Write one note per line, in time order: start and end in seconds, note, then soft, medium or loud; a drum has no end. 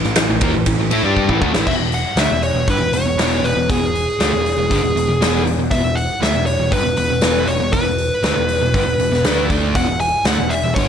0.04 0.16 A1 medium
0.04 0.16 A2 medium
0.04 0.16 E3 medium
0.04 snare soft
0.15 0.28 A1 medium
0.15 0.29 A2 medium
0.15 0.29 E3 medium
0.15 snare loud
0.15 ride loud
0.29 0.41 A1 medium
0.29 0.41 A2 medium
0.29 0.41 E3 medium
0.41 0.53 D#2 loud
0.41 0.53 D#3 medium
0.41 0.53 A#3 loud
0.41 kick loud
0.41 ride medium
0.53 0.65 A1 medium
0.53 0.65 A2 medium
0.53 0.66 E3 medium
0.66 0.77 A1 medium
0.66 0.77 A2 medium
0.66 0.78 E3 medium
0.66 kick medium
0.66 ride medium
0.78 0.90 A1 medium
0.78 0.91 A2 medium
0.78 0.90 E3 medium
0.90 1.03 A2 medium
0.90 1.03 A3 medium
0.90 1.03 E4 medium
0.90 ride medium
1.03 1.27 G2 medium
1.03 1.29 G3 loud
1.03 1.29 D4 loud
1.03 1.29 G4 medium
1.17 kick medium
1.29 1.41 A1 medium
1.29 1.41 A2 medium
1.29 1.41 E3 loud
1.29 kick medium
1.41 1.53 D2 medium
1.41 1.53 D3 loud
1.41 1.54 A3 loud
1.41 kick medium
1.53 1.65 A1 medium
1.53 1.66 A2 loud
1.53 1.66 E3 loud
1.53 snare loud
1.66 1.77 E1 medium
1.66 1.78 E2 medium
1.66 1.79 B2 loud
1.66 1.74 E5 medium
1.66 kick loud
1.66 crash loud
1.78 2.02 E1 medium
1.78 2.00 E2 medium
1.78 2.00 B2 medium
1.92 2.19 F#5 loud
1.92 open hi-hat soft
2.16 2.28 D2 medium
2.16 2.29 D3 medium
2.16 2.30 A3 medium
2.16 2.43 E5 medium
2.16 snare loud
2.16 open hi-hat medium
2.29 2.53 E1 medium
2.29 2.50 E2 medium
2.29 2.50 B2 medium
2.43 2.66 C#5 medium
2.43 open hi-hat medium
2.54 2.66 E1 medium
2.54 2.68 E2 medium
2.54 2.68 B2 medium
2.67 2.79 G1 medium
2.67 2.80 G2 medium
2.67 2.81 D3 medium
2.67 2.95 B4 medium
2.67 kick loud
2.67 open hi-hat medium
2.79 2.91 E1 medium
2.79 2.93 E2 medium
2.79 2.93 B2 medium
2.92 3.03 E1 medium
2.92 3.05 E2 medium
2.92 3.06 B2 medium
2.92 3.45 C#5 medium
2.92 open hi-hat medium
3.04 3.15 E1 medium
3.04 3.17 E2 medium
3.04 3.18 B2 medium
3.16 3.40 E1 medium
3.16 3.43 E2 medium
3.16 3.43 B2 medium
3.16 3.43 E3 medium
3.16 snare loud
3.16 open hi-hat medium
3.43 3.55 E1 medium
3.43 3.56 E2 medium
3.43 3.56 B2 medium
3.43 3.70 B4 medium
3.43 open hi-hat soft
3.55 3.67 E1 medium
3.55 3.67 E2 medium
3.55 3.68 B2 medium
3.69 3.81 E1 medium
3.69 3.80 E2 medium
3.69 3.81 B2 loud
3.69 5.42 G#4 medium
3.69 kick loud
3.69 open hi-hat medium
3.82 4.05 E1 medium
3.82 4.02 E2 medium
3.82 4.02 B2 medium
3.95 open hi-hat soft
4.19 4.31 D2 medium
4.19 4.31 D3 medium
4.19 4.31 A3 loud
4.19 snare loud
4.19 open hi-hat medium
4.32 4.56 E1 medium
4.32 4.52 E2 medium
4.32 4.52 B2 medium
4.46 open hi-hat medium
4.58 4.69 E1 medium
4.58 4.70 E2 medium
4.58 4.70 B2 medium
4.71 4.82 G1 medium
4.71 4.82 G2 medium
4.71 4.82 D3 loud
4.71 kick medium
4.71 open hi-hat medium
4.83 4.94 E1 medium
4.83 4.94 E2 medium
4.83 4.95 B2 medium
4.95 5.07 E1 medium
4.95 5.07 E2 medium
4.95 5.08 B2 medium
4.95 open hi-hat medium
5.08 5.19 E1 medium
5.08 5.20 E2 medium
5.08 5.21 B2 medium
5.20 5.43 E1 medium
5.20 5.45 E2 medium
5.20 5.45 B2 medium
5.20 5.46 E3 medium
5.20 snare loud
5.20 open hi-hat medium
5.45 5.57 E1 medium
5.45 5.58 E2 medium
5.45 5.58 B2 medium
5.45 open hi-hat medium
5.59 5.70 E1 medium
5.59 5.71 E2 medium
5.59 5.71 B2 medium
5.71 5.83 E1 medium
5.71 5.82 E2 medium
5.71 5.83 B2 loud
5.71 5.97 E5 loud
5.71 kick loud
5.71 open hi-hat medium
5.83 6.07 E1 medium
5.83 6.03 E2 medium
5.83 6.04 B2 medium
5.95 6.19 F#5 medium
5.95 open hi-hat soft
6.21 6.33 D2 medium
6.21 6.33 D3 medium
6.21 6.33 A3 loud
6.21 6.46 E5 medium
6.21 snare loud
6.21 open hi-hat medium
6.33 6.58 E1 medium
6.33 6.54 E2 medium
6.33 6.54 B2 medium
6.46 6.72 C#5 medium
6.46 open hi-hat medium
6.59 6.71 E1 medium
6.59 6.70 E2 medium
6.59 6.71 B2 medium
6.71 6.84 G1 medium
6.71 6.83 G2 medium
6.71 6.83 D3 loud
6.71 6.96 B4 medium
6.71 kick loud
6.71 open hi-hat medium
6.84 6.96 E1 medium
6.84 6.96 E2 medium
6.84 6.97 B2 medium
6.97 7.09 E1 medium
6.97 7.09 E2 medium
6.97 7.09 B2 medium
6.97 7.49 B4 medium
6.97 open hi-hat medium
7.10 7.22 E1 medium
7.10 7.20 E2 medium
7.10 7.21 B2 medium
7.21 7.46 E1 medium
7.21 7.46 E2 medium
7.21 7.47 B2 medium
7.21 7.47 E3 medium
7.21 snare loud
7.21 open hi-hat medium
7.47 7.59 E1 medium
7.47 7.59 E2 medium
7.47 7.59 B2 medium
7.47 7.71 C#5 medium
7.47 open hi-hat medium
7.59 7.71 E1 medium
7.59 7.71 E2 medium
7.59 7.72 B2 medium
7.72 7.84 E1 medium
7.72 7.84 E2 medium
7.72 7.85 B2 loud
7.72 9.46 B4 medium
7.72 kick loud
7.72 open hi-hat medium
7.84 8.08 E1 medium
7.84 8.06 E2 medium
7.84 8.06 B2 medium
7.98 open hi-hat medium
8.23 8.34 D2 medium
8.23 8.35 D3 medium
8.23 8.36 A3 medium
8.23 snare loud
8.23 open hi-hat medium
8.35 8.59 E1 medium
8.35 8.56 E2 medium
8.35 8.56 B2 medium
8.48 open hi-hat medium
8.60 8.73 E1 medium
8.60 8.73 E2 medium
8.60 8.74 B2 medium
8.74 8.86 G1 medium
8.74 8.86 G2 medium
8.74 8.86 D3 loud
8.74 kick loud
8.74 open hi-hat medium
8.86 8.98 E1 medium
8.86 8.98 E2 medium
8.86 8.98 B2 medium
8.98 9.10 E1 medium
8.98 9.11 E2 medium
8.98 9.11 B2 medium
8.98 open hi-hat medium
9.11 9.23 E1 medium
9.11 9.25 E2 medium
9.11 9.24 B2 medium
9.11 snare soft
9.24 9.48 D2 medium
9.24 9.49 D3 medium
9.24 9.49 A3 medium
9.24 9.49 D4 medium
9.24 snare loud
9.24 open hi-hat medium
9.50 9.73 D2 medium
9.50 9.75 D3 medium
9.50 9.75 A3 medium
9.50 9.75 D4 medium
9.50 kick loud
9.50 open hi-hat soft
9.75 9.87 E1 medium
9.75 9.87 E2 medium
9.75 9.88 B2 medium
9.75 9.99 F#5 medium
9.75 kick loud
9.75 open hi-hat medium
9.87 10.11 E1 medium
9.87 10.08 E2 medium
9.87 10.09 B2 medium
10.00 10.26 G#5 medium
10.00 open hi-hat soft
10.25 10.37 D2 medium
10.25 10.38 D3 medium
10.25 10.38 A3 medium
10.25 10.52 F#5 loud
10.25 snare loud
10.25 open hi-hat medium
10.38 10.62 E1 medium
10.38 10.59 E2 medium
10.38 10.59 B2 medium
10.50 10.74 E5 medium
10.50 open hi-hat medium
10.64 10.75 E1 medium
10.64 10.76 E2 medium
10.64 10.77 B2 medium
10.75 10.88 G1 medium
10.75 10.88 G2 medium
10.75 10.88 D3 medium
10.75 10.88 C#5 medium
10.75 kick loud
10.75 open hi-hat medium